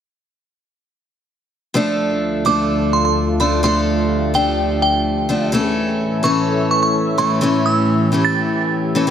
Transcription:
1.74 D2 D3 F3 A3 D4 F4 A4
2.45 F3 A3 D4 A4 D6
2.93 C6
3.05 C6
3.40 F3 A3 D4 A4 C6
3.63 F3 A3 D4 G4 A4 C6
4.34 F3 A3 D4 A4 G5
4.82 G5
5.29 F3 A3 D4 A4
5.52 A2 E3 A3 C#4 A4 E5
6.23 E3 A3 C#4 A4 C#6
6.71 C#6
6.83 C#6
7.18 E3 A3 C#4 A4 C#6
7.41 E3 A3 C#4 G4 A4
7.66 E6
8.12 E3 A3 C#4 A4
8.25 A6
8.95 E3 A3 C#4 A4
9.07 E3 A3

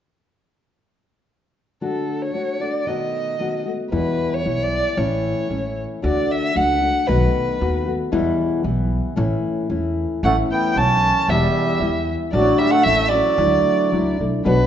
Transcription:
1.81 D3 A3 D4 F#4 A4
2.22 C#5
2.33 D3 A3 D4 F#4
2.60 A3 D4 F#4 D5
2.86 B2 D#3 A3 B3 F#4 D#5
3.39 D#3 A3 B3 F#4
3.65 A3 B3 F#4
3.92 E2 B2 E3 G3 B3 E4 B4
4.34 C#5
4.44 B1 E3 G3 B3 E4
4.63 D5
4.97 A1 A2 E3 A3 C#4 E4 C#5
5.50 A1 E3 A3 C#4 E4
6.02 D2 D3 A3 D4 F#4 D5
6.31 E5
6.54 C#2 D3 A3 D4 F#4 F#5
6.81 A3 D4 F#4
7.08 B1 B2 D#3 A3 B3 F#4 B4
7.60 D#2 D#3 A3 B3 F#4
7.86 A3 B3 F#4
8.12 E2 B2 E3 G3 B3 E4
8.63 B1 E3 G3 B3 E4
9.16 A1 A2 E3 A3 C#4 E4
9.70 E2 E3 A3 C#4 E4
10.23 A1 A2 E3 A3 C#4 E4 F#5
10.51 B3 G5
10.76 B1 E3 A3 C#4 E4 A5
11.28 E1 E2 B2 E3 G3 B3 E4 E5
11.81 E2 E3 G3 B3 E4
12.32 A1 A2 D3 F#3 A3 D4 F#4 D5
12.59 G3 E5
12.71 A3 F#5
12.84 A1 E3 A3 C#4 E4 E5
13.09 F#3 C#4 E4 D5
13.14 A3
13.38 D2 D3 F#3 A3 D4 E4
13.92 C#2 F#3 A3 D4 E4
14.19 B1 A3 D4 E4
14.45 B1 B2 F#3 B3 D4 F#4 B4

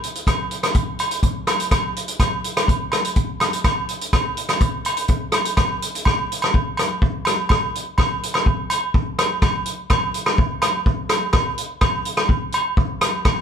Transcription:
0.04 closed hi-hat
0.15 closed hi-hat
0.27 kick, cross-stick, closed hi-hat, low agogo
0.51 closed hi-hat
0.63 cross-stick, closed hi-hat, low agogo
0.75 kick, closed hi-hat
0.99 closed hi-hat, low agogo
1.11 closed hi-hat
1.23 kick, closed hi-hat
1.47 cross-stick, closed hi-hat, low agogo
1.60 closed hi-hat
1.71 kick, cross-stick, closed hi-hat, low agogo
1.96 closed hi-hat
2.08 closed hi-hat
2.20 kick, cross-stick, closed hi-hat, low agogo
2.44 closed hi-hat
2.57 cross-stick, closed hi-hat, low agogo
2.68 kick, closed hi-hat
2.92 cross-stick, closed hi-hat, low agogo
3.05 closed hi-hat
3.16 kick, closed hi-hat
3.40 cross-stick, closed hi-hat, low agogo
3.53 closed hi-hat
3.64 kick, cross-stick, closed hi-hat, low agogo
3.89 closed hi-hat
4.01 closed hi-hat
4.13 kick, cross-stick, closed hi-hat, low agogo
4.37 closed hi-hat
4.49 cross-stick, closed hi-hat, low agogo
4.61 kick, closed hi-hat
4.85 closed hi-hat, low agogo
4.97 closed hi-hat
5.08 kick, closed hi-hat
5.32 cross-stick, closed hi-hat, low agogo
5.45 closed hi-hat
5.57 kick, cross-stick, closed hi-hat, low agogo
5.82 closed hi-hat
5.95 closed hi-hat
6.05 kick, cross-stick, low agogo
6.32 closed hi-hat
6.42 cross-stick, low agogo
6.54 kick
6.77 cross-stick, closed hi-hat, low agogo
7.02 kick
7.25 cross-stick, closed hi-hat, low agogo
7.49 kick, cross-stick, low agogo
7.75 closed hi-hat
7.98 kick, cross-stick, low agogo
8.23 closed hi-hat
8.34 cross-stick, low agogo
8.46 kick
8.70 closed hi-hat, low agogo
8.94 kick
9.19 cross-stick, closed hi-hat, low agogo
9.42 kick, cross-stick, low agogo
9.66 closed hi-hat
9.90 kick, cross-stick, low agogo
10.14 closed hi-hat
10.26 cross-stick, low agogo
10.38 kick
10.62 cross-stick, closed hi-hat, low agogo
10.86 kick
11.09 cross-stick, closed hi-hat, low agogo
11.33 kick, cross-stick, low agogo
11.58 closed hi-hat
11.81 kick, cross-stick, low agogo
12.05 closed hi-hat
12.17 cross-stick, low agogo
12.29 kick
12.52 closed hi-hat, low agogo
12.77 kick
13.01 cross-stick, closed hi-hat, low agogo
13.25 kick, cross-stick, low agogo

